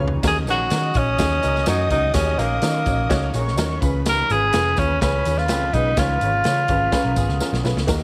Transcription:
Already playing: D#4 B4
0.00 C#2 C#4 F4 G#4 C#5
0.08 floor tom
0.23 D#2 D#3 C#4 D#4 F#4 A#4 D#5 D#6, kick, snare, closed hi-hat, tambourine
0.27 G#4
0.47 A#1 G#3 C#4 D#4 F#4 G#4 A#4, closed hi-hat, tambourine
0.70 D#3 C#4 D#4 F#4 A#4, snare, closed hi-hat, tambourine
0.94 A#1 C#4 D#4 F#4 C#5, kick, closed hi-hat, tambourine
1.18 D#2 C#4 D#4 F#4 G#4, kick, snare, closed hi-hat, tambourine
1.42 C#2 A#3 C#4 D#4 F#4 A#4, closed hi-hat, tambourine
1.56 snare
1.66 F#2 C#4 D#4 F#4 A#4 C#5, snare, closed hi-hat, tambourine
1.90 C#2 F#2 C#4 D#4 F#4 A#4, kick, closed hi-hat, tambourine
2.14 D#2 D#3 C#4 D#4 F#4 G#4, kick, snare, closed hi-hat, tambourine
2.38 A#1 G#3 A#3 C#4 D#4 F#4 G#4 A#4, closed hi-hat, tambourine
2.62 D#3 C#4 D#4 F#4 A#4, snare, closed hi-hat, tambourine
2.86 A#1 C#4 D#4 F#4 C#5, kick, closed hi-hat, tambourine
3.09 C#2 C#4 D#4 F#4 C#5, kick, snare, closed hi-hat, tambourine
3.33 A#1 A#3 C#4 D#4 F#4 G#4 A#4 C#5 C#6, closed hi-hat, tambourine
3.48 snare
3.56 D#2 C#4 D#4 F#4 A#4, snare, closed hi-hat, tambourine
3.81 C#2 C#3 C#4 F4 G#4 B4 B5, kick, closed hi-hat, tambourine
4.06 D#2 A#4, snare, closed hi-hat, tambourine
4.30 G#1 C#4 F4 G#4 B4, closed hi-hat, tambourine
4.53 F1 C#4 F4 G#4 B4, snare, closed hi-hat, tambourine
4.77 D#2 C#4 F4 G#4 C#5, kick, closed hi-hat, tambourine
5.01 C#2 C#4 F4 G#4 B4, kick, snare, closed hi-hat, tambourine
5.25 D#2 C#4 F4 G#4 C#5, closed hi-hat, tambourine
5.38 F4, snare
5.48 C#2 F2 C#4 F4 G#4 B4, snare, closed hi-hat, tambourine
5.73 B1 G#2 C#3 C#4 D#4 F4 G#4 B4, kick, closed hi-hat, tambourine
5.97 C#2 G#2 C#4 F4 G#4 C#5, kick, snare, closed hi-hat, tambourine
6.21 G#1 C#4 F4 G#4 C#5, closed hi-hat, tambourine
6.44 C#3 C#4 F4 G#4 C#5, snare, closed hi-hat, tambourine
6.68 G#1 C#4 F4 G#4 B4 C#5, kick, closed hi-hat, tambourine
6.92 C#4 F4 G#4 A#4 B4, kick, snare, closed hi-hat, tambourine
7.05 B1
7.15 G#1 B3 C#4 F4 G#4 B4, kick, closed hi-hat, tambourine
7.29 C#2, snare
7.40 C#4 F4 G#4 A#4, snare, tambourine
7.53 B1, snare
7.63 B1 C#4 F4 G#4 B4, snare, tambourine
7.76 C#2, snare
7.87 D#2 D#3 A#3 D#4 F#4 A#4, kick, snare, closed hi-hat, tambourine

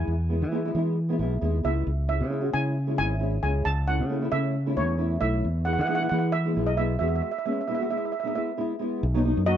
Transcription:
Already playing: G#3 B3 E4 G#5
0.08 E2
0.29 G#3 B3 E4
0.42 E3
0.51 G#3 B3 E4
0.65 G#3 B3 E4
0.75 E3 G#3 B3 E4
1.09 G#3 B3 E4
1.19 B1 G#3 B3 E4
1.41 D#2 G#3 B3 E4
1.63 C#2 G#3 B3 E4 E5
1.87 C#2
2.08 G#3 C#4 E4 E5
2.21 C#3
2.29 G#3 C#4 E4
2.41 G#3 C#4 F#4
2.52 C#3 G#3 C#4 E4 G#5
2.87 G#3 C#4 E4
2.96 G#1 G#3 C#4 E4 G#5
3.20 G#3 C#4 E4
3.43 C#2 G#3 C#4 E4 G#5
3.65 C#2 A5
3.87 A3 C#4 E4 F#5
3.99 C#3
4.09 A3 C#4 E4
4.21 A3 C#4 E4
4.31 C#3 A3 C#4 E4 E5
4.66 A3 C#4 E4
4.76 E2 A3 C#4 E4 C#5
4.98 A3 C#4 E4
5.20 B1 A3 C#4 E4 E5
5.45 E2
5.65 G#3 B3 E4 F#5
5.73 F#5
5.78 E3 F#5
5.87 G#3 B3 D#4 F#5
5.95 F#5
6.00 G#3 B3 E4 F#5
6.09 E3 G#3 B3 E4 F#5
6.19 F#5
6.32 E5
6.45 G#3 B3 E4
6.55 B1 G#3 B3 E4
6.67 D#5
6.77 G#3 B3 E4 E5
6.99 E2 G#3 B3 F#4 E5
7.08 E5
7.16 E5
7.22 E5
7.31 E5
7.38 E5
7.45 G#3 B3 C#4 E5
7.53 E5
7.61 E5
7.68 G#3 B3 E4 E5
7.75 E5
7.79 G#3 B3 F#4
7.83 E5
7.89 G#3 B3 E4 E5
7.98 E5
8.05 E5
8.12 E5
8.20 G#3 E5
8.24 B3 D#4 E5
8.34 G#3 B3 E4 E5
8.57 G#3 B3 E4
8.79 G#3 B3 E4
9.03 B1
9.14 F#3 B3 D#4
9.24 F#3 B3 D#4
9.37 F#2
9.46 F#3 B3 D#4 F#4 D#5

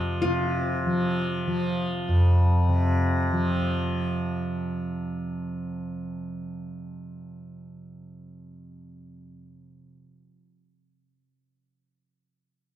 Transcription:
Already playing: F2 C3 F3
0.22 C3 F4
0.86 F3
1.47 F3
2.08 F2
2.69 C3
3.33 F3

